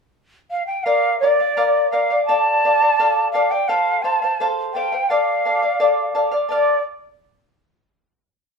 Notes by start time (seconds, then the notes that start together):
0.51 F5
0.67 G5
0.84 A#4 D5 F5
1.20 A#4 D5 F5
1.40 D5 F5
1.57 A#4 D5 F5
1.91 A#4 D5 F5
2.10 D5 F5
2.25 A4 F5 A5
2.29 D5
2.64 A4 D5 F5
2.82 D5 F5
2.99 A4 D5 F5
3.32 A4 D5 F5
3.51 D5 F5 G5
3.68 A4 C5 F5
4.02 A4 C5 F5 A5
4.22 C5 F5
4.40 A4 C5 F5
4.73 A4 C5 F5 G5
4.92 C5 F5
5.10 A4 D5 F5
5.45 A4 D5 F5
5.62 D5 F5
5.80 A4 D5 F5
6.15 A4 D5 F5
6.31 D5 F5
6.49 A4 D5 F5